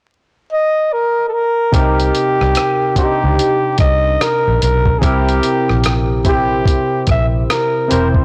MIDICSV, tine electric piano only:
0, 0, Header, 1, 2, 480
1, 0, Start_track
1, 0, Tempo, 821918
1, 1010, Time_signature, 4, 2, 24, 8
1, 4816, End_track
2, 0, Start_track
2, 0, Title_t, "Tine electric piano"
2, 0, Program_c, 0, 4
2, 1003, Note_on_c, 0, 48, 74
2, 1007, Note_on_c, 0, 60, 71
2, 1013, Note_on_c, 0, 63, 73
2, 1018, Note_on_c, 0, 67, 74
2, 1023, Note_on_c, 0, 70, 85
2, 1118, Control_c, 0, 64, 127
2, 1617, Note_off_c, 0, 48, 0
2, 1619, Note_off_c, 0, 60, 0
2, 1622, Note_off_c, 0, 63, 0
2, 1625, Note_off_c, 0, 67, 0
2, 1627, Note_off_c, 0, 70, 0
2, 1724, Note_on_c, 0, 48, 60
2, 1728, Note_on_c, 0, 60, 56
2, 1736, Note_on_c, 0, 62, 43
2, 1739, Note_on_c, 0, 67, 53
2, 1745, Note_on_c, 0, 72, 60
2, 1773, Note_on_c, 0, 63, 58
2, 1779, Note_off_c, 0, 62, 0
2, 2524, Note_off_c, 0, 48, 0
2, 2526, Note_off_c, 0, 60, 0
2, 2531, Note_off_c, 0, 67, 0
2, 2534, Note_off_c, 0, 72, 0
2, 2549, Note_off_c, 0, 63, 0
2, 2926, Note_on_c, 0, 48, 82
2, 2929, Note_on_c, 0, 60, 72
2, 2936, Note_on_c, 0, 64, 70
2, 2938, Control_c, 0, 64, 0
2, 2939, Note_on_c, 0, 67, 75
2, 2945, Note_on_c, 0, 70, 90
2, 3036, Control_c, 0, 64, 127
2, 3538, Note_off_c, 0, 48, 0
2, 3540, Note_off_c, 0, 60, 0
2, 3544, Note_off_c, 0, 64, 0
2, 3545, Note_off_c, 0, 67, 0
2, 3548, Note_off_c, 0, 70, 0
2, 3644, Note_on_c, 0, 48, 64
2, 3650, Note_on_c, 0, 60, 56
2, 3655, Note_on_c, 0, 64, 60
2, 3659, Note_on_c, 0, 67, 55
2, 3665, Note_on_c, 0, 72, 66
2, 4444, Note_off_c, 0, 48, 0
2, 4447, Note_off_c, 0, 60, 0
2, 4449, Note_off_c, 0, 64, 0
2, 4451, Note_off_c, 0, 67, 0
2, 4454, Note_off_c, 0, 72, 0
2, 4603, Note_on_c, 0, 48, 67
2, 4608, Note_on_c, 0, 60, 53
2, 4614, Note_on_c, 0, 64, 61
2, 4619, Note_on_c, 0, 67, 55
2, 4625, Note_on_c, 0, 72, 70
2, 4812, Note_off_c, 0, 48, 0
2, 4814, Note_off_c, 0, 60, 0
2, 4816, Note_off_c, 0, 64, 0
2, 4816, Note_off_c, 0, 67, 0
2, 4816, Note_off_c, 0, 72, 0
2, 4816, End_track
0, 0, End_of_file